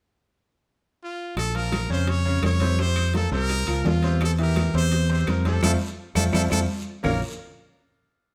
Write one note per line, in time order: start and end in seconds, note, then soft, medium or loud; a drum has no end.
1.03 1.35 F4 medium
1.36 1.86 A#1 medium
1.36 1.57 A4 medium
1.36 high bongo medium
1.36 high conga soft
1.36 high timbale medium
1.36 long guiro medium
1.36 claves medium
1.55 1.84 F3 medium
1.55 1.84 F4 medium
1.55 1.84 A#4 medium
1.55 1.91 A#4 loud
1.55 high conga soft
1.55 high timbale medium
1.72 high bongo medium
1.72 high conga medium
1.72 high timbale medium
1.72 short guiro medium
1.72 claves medium
1.89 2.39 F2 medium
1.89 2.19 C#3 medium
1.89 2.19 C#4 medium
1.89 2.11 C5 medium
1.89 2.19 C#5 medium
1.89 short guiro medium
2.07 2.44 C#5 loud
2.07 high bongo medium
2.07 high conga soft
2.07 high timbale medium
2.07 long guiro medium
2.25 2.54 C#3 medium
2.25 2.55 C#4 medium
2.25 2.55 C#5 medium
2.25 high conga soft
2.43 3.26 F2 loud
2.43 2.82 C#5 loud
2.43 high bongo medium
2.43 low bongo medium
2.43 high conga medium
2.43 high timbale medium
2.43 low timbale medium
2.43 short guiro medium
2.43 claves medium
2.60 2.76 C3 medium
2.60 2.75 C4 medium
2.60 2.76 C5 medium
2.60 high conga medium
2.60 high timbale medium
2.60 short guiro medium
2.78 3.08 C3 medium
2.78 3.08 C4 medium
2.78 3.09 C5 medium
2.78 3.15 C5 loud
2.78 high bongo medium
2.78 high conga soft
2.78 long guiro medium
2.96 high bongo soft
2.96 high conga soft
2.96 high timbale medium
2.96 claves medium
3.14 3.29 F3 medium
3.14 3.29 F4 medium
3.14 3.32 A4 medium
3.14 3.29 A#4 medium
3.14 high bongo medium
3.14 high conga medium
3.14 high timbale medium
3.14 short guiro medium
3.31 3.65 C2 medium
3.31 3.61 C3 medium
3.31 3.61 C4 medium
3.31 3.89 A#4 loud
3.31 3.61 C5 medium
3.31 high conga soft
3.31 short guiro medium
3.49 high bongo medium
3.49 high conga soft
3.49 high timbale medium
3.49 long guiro medium
3.67 3.84 C#2 medium
3.67 3.97 F3 medium
3.67 3.97 F4 medium
3.67 3.97 A#4 medium
3.67 high bongo soft
3.67 high conga soft
3.67 high timbale medium
3.67 claves medium
3.84 4.68 E2 medium
3.84 4.22 F4 medium
3.84 high bongo medium
3.84 low bongo medium
3.84 high conga medium
3.84 low timbale medium
3.84 short guiro medium
4.03 4.33 C3 medium
4.03 4.33 C4 medium
4.03 4.33 C5 medium
4.03 high bongo soft
4.03 high timbale medium
4.03 short guiro medium
4.21 4.32 A4 medium
4.21 high bongo medium
4.21 high conga soft
4.21 high timbale medium
4.21 long guiro medium
4.21 claves medium
4.39 4.68 E3 medium
4.39 4.68 E4 medium
4.39 4.68 G4 medium
4.39 high conga soft
4.39 high timbale medium
4.43 4.74 A#4 medium
4.56 high bongo medium
4.56 high conga medium
4.56 high timbale medium
4.56 short guiro medium
4.56 claves medium
4.74 5.23 E2 loud
4.74 5.03 C3 medium
4.74 5.03 C4 medium
4.74 5.04 C5 medium
4.74 5.09 C5 loud
4.74 short guiro medium
4.92 high bongo medium
4.92 high conga soft
4.92 high timbale medium
4.92 long guiro medium
5.09 5.38 C3 medium
5.09 5.38 C4 medium
5.09 5.38 C5 medium
5.09 5.32 C5 medium
5.09 high conga soft
5.27 5.60 F2 loud
5.27 5.46 A#4 medium
5.27 high bongo medium
5.27 low bongo medium
5.27 high conga medium
5.27 high timbale medium
5.27 short guiro medium
5.27 claves medium
5.45 5.59 C3 medium
5.45 5.60 C4 medium
5.45 5.63 A4 medium
5.45 5.60 C5 medium
5.45 high conga medium
5.45 high timbale medium
5.45 short guiro medium
5.63 5.76 F2 medium
5.63 5.74 A3 loud
5.63 5.74 C4 loud
5.63 5.74 F4 loud
5.63 5.72 A4 loud
5.63 low bongo loud
5.63 high conga medium
5.63 high timbale loud
5.63 long guiro medium
5.63 claves loud
6.15 6.29 F2 medium
6.15 6.27 A3 medium
6.15 6.27 C4 medium
6.15 6.27 F4 medium
6.15 6.24 A4 medium
6.15 low bongo loud
6.15 high conga loud
6.15 high timbale medium
6.15 long guiro loud
6.15 claves medium
6.32 6.47 F2 medium
6.32 6.44 A3 loud
6.32 6.44 C4 loud
6.32 6.44 F4 medium
6.32 6.43 A4 medium
6.32 low bongo medium
6.32 high conga medium
6.32 high timbale loud
6.32 long guiro loud
6.32 claves loud
6.50 6.64 F2 medium
6.50 6.62 A3 medium
6.50 6.62 C4 medium
6.50 6.62 F4 medium
6.50 6.60 A4 medium
6.50 low bongo loud
6.50 high conga loud
6.50 high timbale medium
6.50 long guiro medium
6.50 claves loud
7.03 7.21 A#1 medium
7.03 7.20 A#3 medium
7.03 7.20 F4 medium
7.03 7.20 A#4 medium
7.03 7.21 A#4 medium
7.03 7.20 C#5 medium
7.03 7.21 F5 medium
7.03 7.21 A#5 loud
7.03 low bongo loud
7.03 low conga loud
7.03 low timbale medium
7.03 long guiro medium
7.03 claves loud